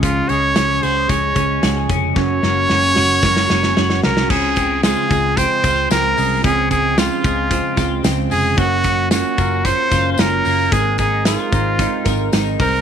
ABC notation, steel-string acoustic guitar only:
X:1
M:4/4
L:1/8
Q:1/4=112
K:Db
V:1 name="Steel-string acoustic guitar"
[D,F,A,DA] [A,DA] [D,F,A,DA] [A,DA] [F,A,DA] [A,DA] [D,F,A,DA]2 | [G,,D,G,B,DG] [G,B,DG] [G,,D,G,B,DG] [G,B,DG] [G,B,DG] [G,B,DG] [G,,D,G,B,DG]2 | [D,F,A,CF]2 [D,F,A,CF] [A,CF] [F,A,CF] [A,CF] [D,F,A,CF]2 | [D,F,A,CF]2 [D,F,A,CF] [A,CF] [F,A,CF] [A,CF] [D,F,A,CF]2 |
[G,B,D]2 [G,B,DF] [B,DF] [G,B,DF] [B,DF] [G,B,DF]2 | [A,CEB]2 [A,CEB] [CEB] [A,CEB] [CEB] [A,CEB]2 |]